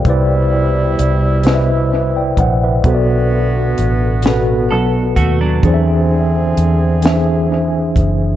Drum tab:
HH |x-xx-x|x-xx-x|x-xx-x|
SD |---o--|---o--|---o--|
BD |o----o|o----o|o----o|